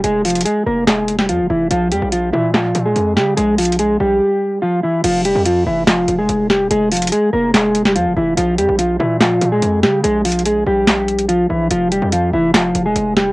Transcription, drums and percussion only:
0.04 closed hi-hat medium
0.25 closed hi-hat soft
0.25 open hi-hat medium
0.30 closed hi-hat medium
0.35 closed hi-hat medium
0.41 closed hi-hat medium
0.46 closed hi-hat medium
0.87 snare loud
0.87 clap medium
0.87 closed hi-hat medium
1.08 closed hi-hat medium
1.19 snare medium
1.29 closed hi-hat medium
1.71 closed hi-hat medium
1.92 closed hi-hat medium
2.12 closed hi-hat medium
2.54 snare loud
2.54 clap medium
2.54 closed hi-hat medium
2.75 closed hi-hat medium
2.96 closed hi-hat medium
3.17 snare medium
3.37 closed hi-hat medium
3.58 closed hi-hat medium
3.58 open hi-hat medium
3.65 closed hi-hat medium
3.72 closed hi-hat medium
3.79 closed hi-hat medium
5.04 closed hi-hat medium
5.04 crash loud
5.25 closed hi-hat medium
5.46 closed hi-hat medium
5.87 snare loud
5.87 clap loud
5.87 closed hi-hat medium
6.08 closed hi-hat medium
6.29 closed hi-hat medium
6.50 snare medium
6.71 closed hi-hat medium
6.92 closed hi-hat soft
6.92 open hi-hat medium
6.97 closed hi-hat medium
7.02 closed hi-hat medium
7.07 closed hi-hat medium
7.12 closed hi-hat medium
7.54 snare loud
7.54 clap loud
7.54 closed hi-hat medium
7.75 closed hi-hat medium
7.85 snare medium
7.96 closed hi-hat medium
8.37 closed hi-hat medium
8.58 closed hi-hat medium
8.79 closed hi-hat medium
9.21 snare loud
9.21 clap medium
9.21 closed hi-hat medium
9.41 closed hi-hat medium
9.62 closed hi-hat medium
9.83 snare medium
10.04 closed hi-hat medium
10.25 closed hi-hat medium
10.25 open hi-hat medium
10.32 closed hi-hat medium
10.39 closed hi-hat soft
10.46 closed hi-hat medium
10.87 snare loud
10.87 clap loud
10.87 closed hi-hat medium
11.08 closed hi-hat soft
11.19 closed hi-hat medium
11.29 closed hi-hat medium
11.71 closed hi-hat medium
11.92 closed hi-hat medium
12.12 closed hi-hat medium
12.54 snare loud
12.54 clap loud
12.54 closed hi-hat medium
12.75 closed hi-hat medium
12.96 closed hi-hat medium
13.17 snare medium

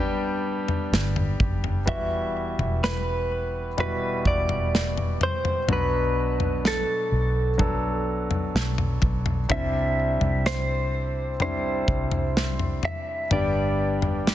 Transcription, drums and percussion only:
0.68 floor tom medium
0.94 snare loud
1.16 floor tom medium
1.40 kick loud
1.40 floor tom medium
1.64 floor tom medium
1.88 kick loud
1.88 floor tom loud
2.59 floor tom medium
2.84 snare loud
3.78 floor tom medium
4.25 kick medium
4.49 floor tom medium
4.75 snare loud
4.97 floor tom medium
5.21 floor tom medium
5.45 floor tom medium
5.69 floor tom loud
6.40 floor tom medium
6.65 snare loud
7.59 kick medium
7.59 floor tom medium
8.31 floor tom medium
8.56 snare loud
8.78 floor tom medium
9.02 kick loud
9.02 floor tom medium
9.26 floor tom medium
9.50 kick loud
9.50 floor tom loud
10.21 floor tom medium
10.46 snare loud
11.40 floor tom medium
11.88 kick loud
12.12 floor tom medium
12.37 snare loud
12.59 floor tom medium
12.83 floor tom medium
13.31 floor tom loud
14.02 floor tom medium
14.27 snare loud

